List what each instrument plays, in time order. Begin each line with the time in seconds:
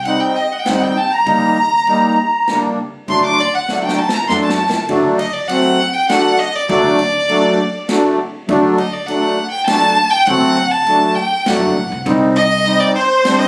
Already playing: upright bass C2
0.05 accordion G3 C4 D#4 F#5, violin F#5, ride
0.20 violin G5, accordion G5
0.36 violin D#5, accordion D#5
0.52 accordion D#5 F#5, violin F#5
0.58 accordion F#5, violin G5
0.64 upright bass D#2, accordion G3 C4 D#4 F#5, violin F#5, snare, ride
0.81 accordion G5, violin G5
0.98 violin A5
1.11 accordion A#5, violin A#5
1.25 upright bass D#2, accordion G3 A#3 D#4, kick, ride
1.87 accordion G3 A#3 D#4, ride
2.48 upright bass C#2, accordion G3 A#3 D4, snare, ride
3.08 upright bass D2, accordion F#3 A3 D4 C6, violin C6, kick, ride
3.25 violin D6
3.38 violin D5, ride
3.54 accordion F#5, violin F#5
3.69 accordion F#3 A3 D4, snare
3.84 violin G5, accordion G5
3.89 snare
3.96 violin A5, accordion A#5
4.00 accordion A5
4.09 snare
4.14 violin A#5, accordion A#5
4.28 upright bass F#2, accordion F#3 A3 D4 C6, violin C6, snare
4.42 violin A5, accordion A5
4.49 snare
4.69 snare
4.89 upright bass D2, accordion F#3 A3 D4, kick, ride
5.19 violin D#5, ride
5.33 violin D5
5.48 accordion F#3 A3 C4, violin F#5, ride
5.94 violin G5
6.09 accordion F#3 A3 D4, violin F#5, snare, ride
6.39 violin D#5
6.55 violin D5
6.68 upright bass D2, accordion F#3 A3 D4, violin D5, kick, ride
6.99 ride
7.29 accordion F#3 A3 D4, ride
7.88 accordion F#3 A3 D4, snare, ride
8.48 upright bass D2, accordion F#3 A3 D4, kick, ride
8.78 violin D#5, ride
8.93 violin D5
9.07 accordion F#3 A3 D4, violin F#5, ride
9.50 violin G5
9.66 accordion F#3 A3 D4, violin A5, snare, ride
10.10 violin G5
10.26 upright bass D2, accordion F#3 A3 C4, violin F#5, kick, ride
10.57 ride
10.71 violin A5
10.87 accordion F#3 A3 D4, ride
11.15 violin G5
11.46 upright bass D1, accordion F#3 A3 D4, violin F#5, snare, ride
11.63 upright bass F#1
11.77 upright bass A1
11.92 upright bass C2
12.06 upright bass C2, accordion G3 C4 D#4, kick, ride
12.35 accordion D#5, violin D#5, ride
12.65 accordion G3 C4 D#4, ride
12.80 violin D5, accordion D5
12.95 violin C5, accordion C5
13.24 accordion G3 C4 D4, snare, ride
13.39 violin D#5